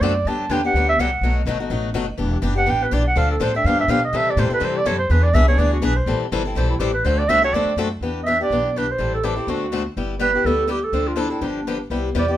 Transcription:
0.01 upright bass F#2, steel-string acoustic guitar D3 A3 C4 F#4 A4, clarinet D5
0.25 upright bass G2, steel-string acoustic guitar D3 F#3 B3 D4 G4, clarinet A5
0.49 upright bass E2, steel-string acoustic guitar D3 F#3 B3 D4 G4, clarinet G5
0.64 steel-string acoustic guitar B3 D4 G4, clarinet F#5
0.74 upright bass D2, steel-string acoustic guitar D3 F#3 B3 D4 G4
0.89 clarinet E5
0.98 upright bass C2, steel-string acoustic guitar D3 F#3 B3 D4 G4, clarinet F#5
1.21 upright bass B1, steel-string acoustic guitar B2 F#3 A3 D#4 F#4
1.46 upright bass G1, steel-string acoustic guitar B2 F#3 A3 D#4 F#4
1.60 steel-string acoustic guitar A3 D#4 F#4
1.70 upright bass A1, steel-string acoustic guitar B2 F#3 A3 D#4 F#4
1.94 upright bass F#1, steel-string acoustic guitar B2 F#3 A3 D#4 F#4
2.18 upright bass E1, steel-string acoustic guitar E3 B3 D4 G4
2.42 upright bass F#1, steel-string acoustic guitar E3 B3 D4 G4
2.55 steel-string acoustic guitar B3 D4 G4, clarinet F#5
2.66 upright bass A1, steel-string acoustic guitar E3 B3 D4 G4, clarinet G5
2.83 clarinet B4
2.91 upright bass B1, steel-string acoustic guitar E3 B3 D4 G4, clarinet D5
3.08 clarinet F#5
3.15 upright bass D2, steel-string acoustic guitar D3 F3 C4 D4 A4, clarinet F5
3.31 clarinet A4
3.40 upright bass A2, steel-string acoustic guitar D3 F3 C4 D4 A4, clarinet C5
3.56 steel-string acoustic guitar C4 D4, clarinet E5
3.64 upright bass G2, steel-string acoustic guitar D3 F3 B3 D4 G4, clarinet F5
3.80 clarinet E5
3.88 upright bass B2, steel-string acoustic guitar D3 F3 B3 D4 G4, clarinet F5
4.04 clarinet D#5
4.13 steel-string acoustic guitar C3 E3 G3 C4 E4 A4, upright bass C3, clarinet E5
4.30 clarinet D5
4.37 upright bass A2, steel-string acoustic guitar C3 E3 G3 C4 E4 A4, clarinet C5
4.50 steel-string acoustic guitar G3 C4 E4 A4, clarinet B4, muted upright bass stroke
4.60 upright bass G2, steel-string acoustic guitar C3 E3 G3 C4 E4 A4
4.64 clarinet C5
4.77 clarinet D5
4.85 upright bass F#2, steel-string acoustic guitar C3 E3 G3 C4 E4 A4, clarinet C#5
4.98 clarinet C5
5.10 upright bass E2, steel-string acoustic guitar E3 B3 D4 G#4, clarinet B4
5.23 clarinet D5
5.34 upright bass C2, steel-string acoustic guitar E3 B3 D4 G#4, clarinet E5
5.48 steel-string acoustic guitar B3 D4 G#4, clarinet C#5
5.58 upright bass D2, steel-string acoustic guitar E3 B3 D4 G#4, clarinet D5
5.73 clarinet F#4
5.82 upright bass B1, steel-string acoustic guitar E3 B3 D4 G#4, clarinet B4
5.96 clarinet C5
6.06 upright bass A1, steel-string acoustic guitar E3 G3 C4 E4 A4
6.20 muted upright bass stroke
6.32 upright bass G1, steel-string acoustic guitar E3 G3 C4 E4 A4
6.47 steel-string acoustic guitar C4 E4
6.55 upright bass B1, steel-string acoustic guitar E3 G3 C4 E4 A4, clarinet C5
6.70 clarinet E4
6.79 upright bass A1, steel-string acoustic guitar E3 G3 C4 E4 A4, clarinet G4
6.94 clarinet B4
7.05 upright bass D2, steel-string acoustic guitar D3 A3 C4 F#4 A4, clarinet C5
7.18 clarinet D5
7.29 upright bass C2, steel-string acoustic guitar D3 A3 C4 F#4 A4, clarinet E5
7.42 steel-string acoustic guitar C4 F#4 A4, clarinet C#5
7.53 upright bass E2, steel-string acoustic guitar D3 A3 C4 F#4 A4, clarinet D5
7.65 muted upright bass stroke
7.76 upright bass F#2, steel-string acoustic guitar D3 A3 C4 F#4 A4
8.01 upright bass E2, steel-string acoustic guitar E3 B3 D4 G4
8.23 steel-string acoustic guitar E3, clarinet D#5 E5
8.28 steel-string acoustic guitar B3 D4 G4
8.40 steel-string acoustic guitar B3 D4 G4, clarinet D5
8.50 upright bass B1, steel-string acoustic guitar E3 B3 D4 G4
8.76 steel-string acoustic guitar E3 B3 D4 G4, clarinet B4
8.91 clarinet C5
8.98 upright bass A1, steel-string acoustic guitar E3 G3 C4 E4 A4
9.15 clarinet A4
9.23 steel-string acoustic guitar E3 G3 C4 E4 A4, clarinet G4
9.35 steel-string acoustic guitar C4 E4 A4
9.47 upright bass D2, steel-string acoustic guitar D3 A3 C4 F#4 A4, clarinet F#4
9.72 steel-string acoustic guitar D3 A3 C4 F#4 A4
9.97 upright bass G1, steel-string acoustic guitar G3 B3 E4 G4
10.19 steel-string acoustic guitar G3 B3 E4 G4, clarinet B4
10.35 steel-string acoustic guitar B3 E4 G4
10.44 upright bass D2, steel-string acoustic guitar G3 B3 E4 G4, clarinet A4
10.68 steel-string acoustic guitar G3 B3 E4 G4, clarinet G4
10.84 clarinet A4
10.92 upright bass D2, steel-string acoustic guitar D3 F3 C4 D4 A4
11.08 clarinet F4
11.16 steel-string acoustic guitar D3 F3 C4 D4 A4, clarinet E4
11.30 steel-string acoustic guitar C4 D4 A4
11.41 upright bass G1, steel-string acoustic guitar D3 F3 B3 D4 G4
11.46 clarinet D4
11.67 steel-string acoustic guitar D3 F3 B3 D4 G4
11.90 upright bass C2, steel-string acoustic guitar C3 G3 B3 E4 G4
12.15 upright bass E2, steel-string acoustic guitar C3 G3 B3 E4 G4
12.19 clarinet D5
12.28 steel-string acoustic guitar B3 E4 G4
12.33 clarinet D5

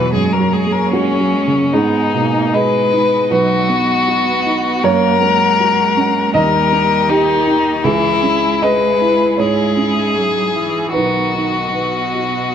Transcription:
Already playing: grand piano E2 B2 F#3 B3 F#4, cello E3, string section B3 F#4 B4, violin B4
0.13 grand piano F#2, cello G#3, string section A#3 G#4 C#5, violin G#4
0.33 cello F#3, violin A#4
0.40 grand piano F#3
0.53 cello G#3, violin G#4
0.66 grand piano G#4
0.72 cello F#3, violin A#4
0.92 cello G#3, grand piano A#3 F#4, violin C#4
1.14 cello F#3
1.20 grand piano F#3
1.33 cello G#3
1.47 grand piano C#3
1.54 cello F#3
1.73 grand piano G#2 G#4, string section G#3 G#4 D#5, cello B3, violin D#4
2.13 grand piano B2, cello A#3
2.53 cello G#3, grand piano G#4 D#5, violin B4
2.93 grand piano D#4
3.31 grand piano B1 B4, cello F#3, violin F#4, string section F#4
3.69 grand piano B3, cello B3
4.08 grand piano F#4
4.46 grand piano D#4
4.83 grand piano F#2 C#5, cello A#3, string section A#3 F#5, violin A#4
5.21 cello G#3, grand piano A#3
5.60 grand piano F#4
5.97 grand piano C#4
6.34 grand piano D#2 D#5, cello G3, string section G4 D#5, violin A#4
6.73 grand piano A#3
7.09 cello D#3, violin D#4, grand piano G4
7.47 grand piano D#4
7.84 grand piano C#2 G#4, cello E3, string section G#3 E4 G#4, violin E4
8.22 cello G#3, grand piano C#4
8.62 grand piano G#4 D#5, violin B4
9.01 grand piano E4
9.37 grand piano G#2 C#5, cello G#3, violin G#4
9.77 grand piano C#4
10.15 cello F#3, grand piano G#4
10.55 cello E3, grand piano E4
10.93 grand piano B1 B4, cello D#3, string section B3 F#4 D#5, violin F#4
11.34 grand piano D#4
11.74 cello B2, grand piano B4
12.15 grand piano F#4

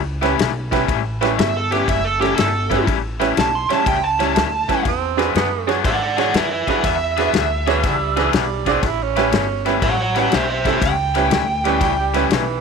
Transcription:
Already playing: upright bass C#2
0.21 overdriven electric guitar A2 G3 C#4 E4, grand piano C#4 E4 G4 B4, snare, ride
0.39 upright bass B1, snare, ride
0.71 overdriven electric guitar A2 G3 C#4 E4, grand piano C#4 E4 G4 B4, kick, snare, ride
0.88 upright bass A1, kick, ride
1.21 overdriven electric guitar A2 G3 C#4 E4, grand piano C#4 E4 G4 B4, snare, ride
1.39 upright bass G1, lead electric guitar E5, snare, ride
1.57 lead electric guitar A4
1.71 overdriven electric guitar A2 G3 C#4 E4, grand piano C#4 E4 G4 B4, lead electric guitar G4, snare, ride
1.88 upright bass F#1, lead electric guitar E5, kick, ride
2.05 lead electric guitar A4
2.20 overdriven electric guitar A2 G3 C#4 E4, grand piano C#4 E4 G4 A4, lead electric guitar G4, snare, ride
2.36 upright bass G1, lead electric guitar A4, snare, ride
2.70 overdriven electric guitar A2 G3 C#4 E4, grand piano C#4 E4 G4 B4, kick, snare, ride
2.87 upright bass A1, kick, ride
3.20 overdriven electric guitar A2 G3 C#4 E4, grand piano C#4 E4 G4 B4, snare, ride
3.37 upright bass B1, lead electric guitar A5, snare, ride
3.55 lead electric guitar C6
3.69 overdriven electric guitar A2 G3 C#4 E4, grand piano C#4 E4 G4 C#5, lead electric guitar A5, muted upright bass stroke, snare, ride
3.86 upright bass C#2, lead electric guitar G5, kick, ride
4.05 lead electric guitar A5
4.19 overdriven electric guitar A2 G3 C#4 E4, grand piano C#4 E4 G4 C#5, snare, ride
4.36 upright bass D2, snare, ride
4.68 overdriven electric guitar A2 G3 C#4 E4, grand piano C#4 E4 G4 B4, muted upright bass stroke, kick, snare, ride
4.85 upright bass E2, tenor saxophone C4, kick, ride
5.17 overdriven electric guitar E3 B3 D4 G#4, grand piano D4 F#4 G#4 B4, snare, ride
5.35 upright bass F#2, tenor saxophone B3, snare, ride
5.67 overdriven electric guitar E3 B3 D4 G#4, grand piano D4 F#4 G#4 C#5, snare, ride
5.84 upright bass G#2, lead electric guitar D5 F#5, kick, snare, ride
6.03 lead electric guitar D5 F#5
6.17 overdriven electric guitar E3 B3 D4 G#4, grand piano D4 F#4 G#4 C#5, lead electric guitar D5 F#5, snare, ride
6.34 upright bass F#2, lead electric guitar B4 E5, snare, ride
6.51 lead electric guitar B4 E5
6.67 overdriven electric guitar E3 B3 D4 G#4, grand piano D4 F#4 G#4 B4, lead electric guitar B4 E5, muted upright bass stroke, kick, snare, ride
6.83 upright bass E2, lead electric guitar E5, kick, snare, ride
7.17 overdriven electric guitar E3 B3 D4 G#4, grand piano D4 F#4 G#4 B4, snare, ride
7.34 upright bass D2, snare, ride
7.67 overdriven electric guitar E3 B3 D4 G#4, tenor saxophone E3, grand piano D4 F#4 G#4 C#5, snare, ride
7.83 upright bass C#2, tenor saxophone G3, kick, snare, ride
8.16 overdriven electric guitar E3 B3 D4 G#4, tenor saxophone E3, grand piano D4 F#4 G#4 B4, snare, ride
8.33 upright bass B1, snare, ride
8.37 tenor saxophone G3
8.66 overdriven electric guitar E3 B3 D4 G#4, grand piano D4 F#4 G#4 D5, kick, snare, ride
8.70 tenor saxophone C4
8.83 upright bass A1, tenor saxophone E4, kick, snare, ride
9.02 tenor saxophone C#4
9.16 overdriven electric guitar A2 G3 C#4 E4, grand piano C#4 E4 G4 B4, snare, ride
9.32 upright bass G1, snare, ride
9.66 overdriven electric guitar A2 G3 C#4 E4, grand piano C#4 E4 G4 B4, snare, ride
9.82 upright bass A1, lead electric guitar C#5 F#5, kick, ride
10.01 lead electric guitar C#5 F#5
10.15 overdriven electric guitar A2 G3 C#4 E4, grand piano C#4 E4 G4 B4, lead electric guitar C#5 F#5, snare, ride
10.32 upright bass B1, lead electric guitar C5 E5, snare, ride
10.50 lead electric guitar C5 E5
10.64 overdriven electric guitar A2 G3 C#4 E4, grand piano C#4 E4 G4 A4, lead electric guitar C5 E5, kick, snare, ride
10.81 upright bass C#2, lead electric guitar G5, kick, snare, ride
11.15 overdriven electric guitar A2 G3 C#4 E4, grand piano C#4 E4 G4 B4, snare, ride
11.31 upright bass D2, snare, ride
11.65 overdriven electric guitar A2 G3 C#4 E4, tenor saxophone G3, grand piano C#4 E4 G4 B4, snare, ride
11.81 upright bass C#2, kick, snare, ride
12.00 tenor saxophone G3
12.14 overdriven electric guitar A2 G3 C#4 E4, grand piano C#4 E4 G4 B4, snare, ride
12.30 upright bass B1, tenor saxophone E3, snare, ride

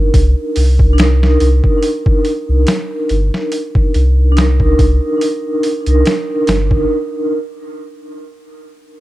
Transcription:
Already playing: vibraphone D4 D#4 A#4
0.14 sub bass C2, kick, open hi-hat
0.56 sub bass C2, open hi-hat
0.79 kick
0.93 vibraphone D4
0.98 vibraphone D#4, snare, open hi-hat
1.03 vibraphone A#4
1.23 snare
1.40 sub bass C2, open hi-hat
1.64 kick
1.83 open hi-hat
2.06 kick
2.25 open hi-hat
2.49 sub bass C2
2.67 snare, open hi-hat
3.09 sub bass G1, open hi-hat
3.34 snare
3.52 open hi-hat
3.75 kick
3.94 sub bass C2, open hi-hat
4.32 vibraphone D4
4.37 vibraphone D#4, snare, open hi-hat
4.41 vibraphone A#4
4.60 kick
4.79 sub bass C2, kick, open hi-hat
5.21 open hi-hat
5.63 open hi-hat
5.81 vibraphone D4
5.86 sub bass C2, vibraphone D#4, closed hi-hat
5.90 vibraphone A#4
6.06 snare, open hi-hat
6.47 sub bass G1, snare, open hi-hat
6.71 kick

